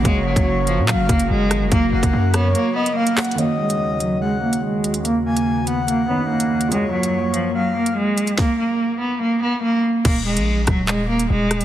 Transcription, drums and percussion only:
0.05 kick loud
0.05 closed hi-hat medium
0.36 kick loud
0.36 closed hi-hat medium
0.67 closed hi-hat medium
0.88 clap loud
1.09 kick loud
1.09 closed hi-hat medium
1.19 closed hi-hat medium
1.51 cross-stick loud
1.51 closed hi-hat medium
1.72 kick loud
1.72 closed hi-hat medium
2.03 kick loud
2.03 closed hi-hat medium
2.34 cross-stick loud
2.34 closed hi-hat medium
2.55 closed hi-hat medium
2.86 closed hi-hat medium
3.07 closed hi-hat medium
3.17 cross-stick loud
3.17 clap loud
3.17 closed hi-hat medium
3.17 open hi-hat medium
3.24 closed hi-hat medium
3.31 closed hi-hat medium
3.38 closed hi-hat medium
3.70 closed hi-hat medium
4.00 closed hi-hat medium
4.53 closed hi-hat medium
4.84 closed hi-hat medium
4.94 closed hi-hat medium
5.05 closed hi-hat medium
5.37 closed hi-hat medium
5.67 closed hi-hat medium
5.88 closed hi-hat medium
6.40 closed hi-hat medium
6.61 closed hi-hat medium
6.72 closed hi-hat medium
7.03 closed hi-hat medium
7.34 closed hi-hat medium
7.86 closed hi-hat medium
8.18 closed hi-hat medium
8.27 closed hi-hat medium
8.38 kick loud
8.38 snare medium
10.05 kick loud
10.05 closed hi-hat medium
10.05 crash medium
10.37 closed hi-hat medium
10.67 kick loud
10.67 cross-stick loud
10.67 closed hi-hat medium
10.88 clap loud
11.19 closed hi-hat medium
11.51 cross-stick loud
11.51 closed hi-hat medium
11.61 closed hi-hat medium

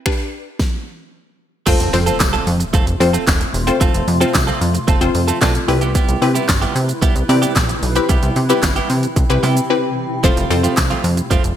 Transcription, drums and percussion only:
0.06 finger snap loud
0.06 kick loud
0.59 kick loud
0.59 snare medium
1.67 kick loud
1.67 closed hi-hat medium
1.67 crash loud
1.67 shaker medium
1.80 closed hi-hat medium
1.80 shaker medium
1.93 open hi-hat medium
1.93 shaker soft
2.07 closed hi-hat medium
2.07 shaker medium
2.20 kick loud
2.20 snare medium
2.20 clap loud
2.20 closed hi-hat medium
2.20 tambourine medium
2.20 shaker loud
2.34 closed hi-hat soft
2.34 shaker soft
2.47 open hi-hat medium
2.47 shaker medium
2.60 closed hi-hat medium
2.60 shaker medium
2.74 kick loud
2.74 closed hi-hat medium
2.74 shaker medium
2.87 closed hi-hat medium
2.87 shaker medium
3.01 open hi-hat medium
3.01 shaker medium
3.14 closed hi-hat medium
3.14 shaker medium
3.27 kick loud
3.27 snare medium
3.27 clap loud
3.27 closed hi-hat medium
3.27 tambourine medium
3.27 shaker medium
3.41 closed hi-hat medium
3.41 shaker medium
3.54 open hi-hat medium
3.54 shaker medium
3.67 closed hi-hat soft
3.67 shaker medium
3.81 kick loud
3.81 closed hi-hat medium
3.81 shaker medium
3.94 closed hi-hat medium
3.94 shaker medium
4.08 open hi-hat medium
4.08 shaker soft
4.21 closed hi-hat medium
4.21 shaker medium
4.34 kick loud
4.34 snare loud
4.34 clap loud
4.34 closed hi-hat medium
4.34 tambourine medium
4.34 shaker medium
4.48 closed hi-hat soft
4.48 shaker soft
4.61 open hi-hat medium
4.61 shaker medium
4.75 closed hi-hat medium
4.75 shaker medium
4.88 kick loud
4.88 closed hi-hat medium
4.88 shaker medium
5.01 closed hi-hat medium
5.01 shaker medium
5.15 open hi-hat medium
5.15 shaker medium
5.28 closed hi-hat medium
5.28 shaker medium
5.41 kick loud
5.41 snare medium
5.41 clap loud
5.41 closed hi-hat medium
5.41 tambourine medium
5.41 shaker medium
5.55 closed hi-hat medium
5.55 shaker medium
5.69 open hi-hat medium
5.69 shaker medium
5.81 closed hi-hat medium
5.81 shaker medium
5.95 kick loud
5.95 closed hi-hat medium
5.95 shaker medium
6.09 closed hi-hat medium
6.09 shaker medium
6.22 open hi-hat medium
6.22 shaker soft
6.36 closed hi-hat medium
6.36 shaker medium
6.49 kick loud
6.49 snare medium
6.49 clap loud
6.49 closed hi-hat medium
6.49 tambourine loud
6.49 shaker loud
6.62 closed hi-hat soft
6.62 shaker soft
6.76 open hi-hat medium
6.76 shaker medium
6.89 closed hi-hat medium
6.89 shaker medium
7.02 kick loud
7.02 closed hi-hat medium
7.02 shaker medium
7.16 closed hi-hat medium
7.16 shaker medium
7.29 open hi-hat medium
7.29 shaker medium
7.43 closed hi-hat medium
7.43 shaker medium
7.56 kick loud
7.56 snare loud
7.56 clap loud
7.56 closed hi-hat medium
7.56 tambourine medium
7.56 shaker medium
7.69 closed hi-hat medium
7.69 shaker medium
7.83 open hi-hat medium
7.83 shaker medium
7.96 closed hi-hat medium
7.96 shaker medium
8.09 kick loud
8.09 closed hi-hat medium
8.09 shaker medium
8.23 closed hi-hat medium
8.23 shaker medium
8.36 open hi-hat medium
8.36 shaker soft
8.50 closed hi-hat medium
8.50 shaker medium
8.63 kick loud
8.63 snare loud
8.63 clap loud
8.63 closed hi-hat loud
8.63 tambourine medium
8.63 shaker loud
8.76 closed hi-hat soft
8.76 shaker soft
8.90 open hi-hat medium
8.90 shaker medium
9.03 closed hi-hat medium
9.03 shaker medium
9.16 kick loud
9.16 closed hi-hat medium
9.16 shaker medium
9.30 closed hi-hat medium
9.30 shaker medium
9.43 open hi-hat medium
9.43 shaker medium
9.57 closed hi-hat medium
9.57 shaker medium
10.24 kick loud
10.24 closed hi-hat medium
10.24 shaker medium
10.37 closed hi-hat medium
10.37 shaker medium
10.51 open hi-hat medium
10.51 shaker medium
10.64 closed hi-hat medium
10.64 shaker medium
10.77 kick loud
10.77 snare medium
10.77 clap loud
10.77 closed hi-hat medium
10.77 tambourine loud
10.77 shaker medium
10.91 closed hi-hat soft
10.91 shaker soft
11.04 open hi-hat medium
11.04 shaker medium
11.17 closed hi-hat medium
11.17 shaker medium
11.31 kick loud
11.31 closed hi-hat medium
11.31 shaker medium
11.44 closed hi-hat medium
11.44 shaker medium

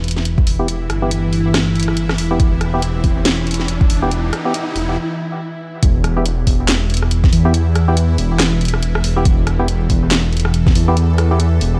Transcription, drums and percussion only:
0.04 closed hi-hat soft
0.08 closed hi-hat medium
0.11 closed hi-hat medium
0.17 snare soft
0.25 closed hi-hat medium
0.38 kick loud
0.47 open hi-hat medium
0.68 closed hi-hat medium
0.90 cross-stick medium
0.90 closed hi-hat medium
1.11 closed hi-hat medium
1.33 open hi-hat medium
1.54 cross-stick medium
1.54 snare loud
1.54 closed hi-hat medium
1.76 closed hi-hat soft
1.80 closed hi-hat medium
1.83 closed hi-hat medium
1.88 cross-stick medium
1.97 closed hi-hat medium
2.09 cross-stick medium
2.09 snare soft
2.18 open hi-hat medium
2.40 kick loud
2.40 closed hi-hat medium
2.61 cross-stick medium
2.61 closed hi-hat medium
2.82 closed hi-hat medium
3.04 kick medium
3.04 open hi-hat medium
3.25 snare loud
3.25 closed hi-hat medium
3.47 closed hi-hat soft
3.51 closed hi-hat medium
3.54 closed hi-hat medium
3.60 snare soft
3.68 closed hi-hat medium
3.81 kick loud
3.90 open hi-hat medium
4.11 closed hi-hat medium
4.33 cross-stick medium
4.33 closed hi-hat soft
4.54 closed hi-hat medium
4.76 open hi-hat medium
5.83 kick loud
5.83 closed hi-hat medium
6.04 cross-stick medium
6.04 closed hi-hat medium
6.26 closed hi-hat medium
6.47 kick medium
6.47 open hi-hat medium
6.68 snare loud
6.68 clap loud
6.68 closed hi-hat medium
6.90 closed hi-hat soft
6.94 closed hi-hat medium
6.97 closed hi-hat medium
7.02 cross-stick medium
7.11 closed hi-hat medium
7.24 kick loud
7.24 snare soft
7.33 open hi-hat medium
7.54 closed hi-hat medium
7.75 cross-stick medium
7.75 closed hi-hat medium
7.97 closed hi-hat medium
8.18 open hi-hat medium
8.40 cross-stick medium
8.40 snare loud
8.40 clap loud
8.40 closed hi-hat medium
8.61 closed hi-hat soft
8.65 closed hi-hat medium
8.68 closed hi-hat medium
8.74 cross-stick medium
8.83 closed hi-hat medium
8.95 cross-stick medium
9.04 open hi-hat medium
9.25 kick loud
9.25 closed hi-hat medium
9.47 cross-stick medium
9.47 closed hi-hat medium
9.68 closed hi-hat medium
9.90 kick medium
9.90 open hi-hat medium
10.11 snare loud
10.11 clap medium
10.11 closed hi-hat medium
10.33 closed hi-hat soft
10.37 closed hi-hat medium
10.40 closed hi-hat medium
10.45 cross-stick medium
10.54 closed hi-hat medium
10.67 kick loud
10.67 snare soft
10.75 open hi-hat medium
10.97 closed hi-hat medium
11.18 cross-stick medium
11.18 closed hi-hat medium
11.40 closed hi-hat medium
11.61 open hi-hat medium

